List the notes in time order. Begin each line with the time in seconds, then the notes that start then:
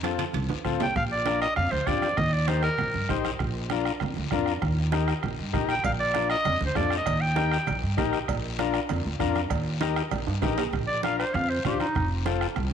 Already playing: F2
0.03 C4 F4 A4, bombo rim, high conga, high timbale, short guiro
0.18 low conga, high timbale, short guiro
0.33 C2, high conga, high timbale, long guiro
0.49 D#2, low conga, high timbale
0.65 D2 C4 F4 A4, bombo low, bombo rim, low conga, short guiro
0.80 C2 G5, low conga, low timbale, short guiro
0.96 A#1 F5, bombo low, bombo rim, long guiro
1.11 D5, high conga
1.26 D4 F4 A#4, bombo rim, high conga, short guiro
1.41 D#5, bombo rim, short guiro
1.56 F2 F5, bombo rim, high conga, low conga, long guiro
1.71 D2 C5, high conga
1.87 F2 D4 F4 G4 D5, bombo low, bombo rim, high conga, low conga, short guiro
2.02 bombo rim, high conga, short guiro
2.17 D#2 D#5, bombo low, bombo rim, low conga, long guiro
2.33 D5, high conga
2.47 D#4 G4 A#4 C5, bombo rim, high conga, short guiro
2.63 A#4, bombo rim, short guiro
2.78 A#1, bombo rim, high conga, low conga, long guiro
2.94 G2, high conga
3.09 A#1 D#4 G4 C5, bombo low, bombo rim, high conga, low conga, short guiro
3.24 bombo rim, high conga, short guiro
3.39 A#1, bombo low, bombo rim, long guiro
3.55 high conga
3.70 D4 F4 A#4, bombo rim, high conga, short guiro
3.85 bombo rim, short guiro
4.00 F2, bombo rim, high conga, low conga, long guiro
4.16 D2, high conga
4.31 F2 D4 F4 A#4, bombo low, bombo rim, high conga, short guiro
4.46 bombo rim, short guiro
4.62 D#2, bombo low, bombo rim, long guiro
4.78 high conga
4.92 D#4 G4 A#4, bombo rim, high conga, short guiro
5.08 bombo rim, short guiro
5.23 A#1, bombo rim, high conga, low conga, long guiro
5.39 G2
5.53 A#1 D#4 G4 A#4, bombo low, bombo rim, high conga, low conga, short guiro
5.69 G5, bombo rim, high conga, short guiro
5.84 A#1 F5, bombo low, bombo rim, cowbell, low conga, long guiro
6.00 D5, high conga
6.14 D4 F4 A#4, bombo rim, high conga, short guiro
6.30 D#5, bombo rim, short guiro
6.45 F2, bombo rim, cowbell, high conga, low conga, long guiro
6.61 D2, high conga
6.66 C5
6.75 F2 D4 F4 A4 D5, bombo low, bombo rim, high conga, low timbale, short guiro
6.90 bombo rim, short guiro
6.97 D#5
7.06 D#2, bombo low, bombo rim, cowbell, long guiro
7.21 G5, high conga
7.36 D#4 G4 A#4, bombo rim, high conga, short guiro
7.51 bombo rim, short guiro
7.67 A#1, bombo rim, cowbell, high conga, low conga, long guiro
7.83 G2
7.97 A#1 D#4 G4 A#4, bombo low, bombo rim, high conga, low conga, low timbale, short guiro
8.13 bombo rim, short guiro
8.28 A#1, bombo low, bombo rim, cowbell, long guiro
8.43 high conga
8.59 D4 F4 A#4, bombo rim, high conga, short guiro
8.74 bombo rim, short guiro
8.89 F2, bombo rim, cowbell, high conga, low conga, long guiro
9.05 D2
9.19 F2 D4 F4 A#4, bombo low, bombo rim, high conga, short guiro
9.35 bombo rim, high conga, short guiro
9.50 D#2, bombo low, bombo rim, cowbell, long guiro
9.66 high conga
9.80 D#4 G4 A#4, bombo rim, high conga, short guiro
9.96 bombo rim, short guiro
10.11 A#1, bombo rim, cowbell, high conga, low conga, long guiro
10.27 G2, high timbale
10.42 A#1 D#4 G4 A#4, bombo low, bombo rim, high conga, low conga, high timbale, short guiro
10.58 bombo rim, low timbale, short guiro
10.73 A#1, bombo low, bombo rim, low conga, long guiro
10.87 D5, high conga
11.03 D4 F4 A#4 F5, bombo rim, high conga, short guiro
11.19 C5, bombo rim, short guiro
11.34 F2 F5, bombo rim, high conga, low conga, long guiro
11.49 C5
11.65 D2 D4 F4 G4 C5, bombo low, bombo rim, high conga, low conga, short guiro
11.80 D#4, bombo rim, high conga, short guiro
11.95 F1, bombo low, bombo rim, low conga, long guiro
12.10 high conga
12.25 C4 F4 A4, bombo rim, high conga, short guiro
12.41 bombo rim, short guiro
12.56 C2, bombo rim, high conga, low conga, long guiro